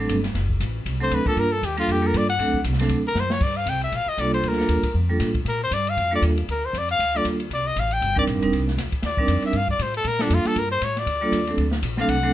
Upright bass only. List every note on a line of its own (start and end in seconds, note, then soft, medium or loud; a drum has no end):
0.08 0.34 G1 medium
0.35 0.59 F#1 medium
0.60 0.85 A1 medium
0.86 1.10 C2 medium
1.11 1.25 D2 medium
1.26 muted upright bass stroke soft
1.36 1.61 G2 medium
1.63 1.87 D#2 medium
1.88 2.13 F2 medium
2.14 2.38 G2 medium
2.39 2.64 D2 medium
2.65 2.89 C2 medium
2.90 3.15 D2 medium
3.15 3.40 F#2 medium
3.41 3.65 G2 medium
3.66 3.91 C2 medium
3.92 4.06 A#1 medium
4.06 muted upright bass stroke soft
4.18 4.42 C2 medium
4.43 4.68 D2 medium
4.69 4.83 D#2 medium
4.84 muted upright bass stroke soft
4.94 5.19 F2 medium
5.20 5.44 A2 medium
5.45 5.70 A#2 medium
5.71 5.96 G2 medium
5.97 6.21 F2 medium
6.22 6.47 D#2 medium
6.48 6.73 D2 medium
6.73 6.98 F2 medium
6.99 7.24 D2 medium
7.25 7.50 D#2 medium
7.50 7.75 C2 medium
7.76 8.01 A1 medium
8.02 8.26 G1 medium
8.27 8.35 A#1 medium
8.35 8.42 G1 medium
8.43 8.51 D#1 medium
8.53 8.77 C2 medium
8.77 8.91 D2 medium
8.92 muted upright bass stroke soft
9.03 9.27 D#2 medium
9.28 9.42 F2 medium
9.43 muted upright bass stroke soft
9.53 9.78 G2 medium
9.79 10.04 A2 medium
10.05 10.29 A#2 medium
10.30 10.44 F2 medium
10.45 muted upright bass stroke soft
10.55 10.80 G2 medium
10.82 11.05 A2 medium
11.06 11.31 D2 medium
11.32 11.57 D#2 medium
11.57 11.82 D2 medium
11.82 12.07 A#1 medium
12.08 12.33 C2 medium